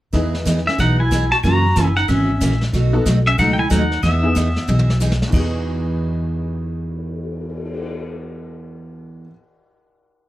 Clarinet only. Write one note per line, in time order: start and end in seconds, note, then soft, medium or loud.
0.69 0.79 C#4 medium
0.80 1.01 D#4 medium
0.99 1.32 E4 medium
1.32 1.38 F#4 medium
1.45 1.94 F#4 medium
1.97 2.11 D#4 medium
2.09 2.62 C#4 medium
3.27 3.38 C#4 medium
3.39 3.52 D#4 medium
3.53 3.58 D#4 medium
3.59 3.70 E4 medium
3.70 4.01 D#4 medium
4.03 4.97 B3 medium